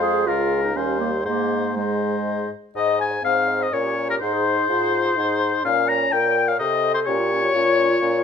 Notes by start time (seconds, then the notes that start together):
Already playing: F2 G#3 C5 F5
0.02 G#4
0.26 C#2 G#3 F4 A#4 F5
0.63 D#4
0.75 D#2 G3 C#4 C5 F5
1.00 A#3
1.25 G#2 G#3 A#3 C5 D#5
1.76 G#3 C5 D#5
2.75 G#2 D#5
2.87 C5
2.99 D#5 G#5
3.11 C5
3.22 G#2 C4 D#5 F5
3.35 C5
3.48 D#5
3.59 C5 D#5
3.71 A#2 C#4 A#4 C#5
3.84 G4
3.96 A#4
4.08 G4 A#4
4.20 G#2 D#4 C5
4.33 G#4
4.46 C5
4.57 G#4
4.68 G#2 F4 C5
4.80 G#4
4.93 C5
5.05 G#4
5.17 G#2 D#4 C5
5.28 G#4
5.40 C5
5.53 G#4
5.64 A#2 C#4 A#4 F5
5.77 C#5
5.88 A#4 A#5
6.02 C#5
6.12 A#2 A#4 G5
6.26 C#5
6.38 A#4
6.48 C#5 F5
6.59 C3 A4 C5 D#5
6.73 A4
6.84 C5
6.94 A4 C5
7.06 A#2 C#4 G4 C#5
7.19 F4
7.32 C#4
7.43 F4
7.54 A#2 C#4 F4
7.66 F4
7.79 C#4
7.90 F4
8.02 A#2 C#4
8.14 F4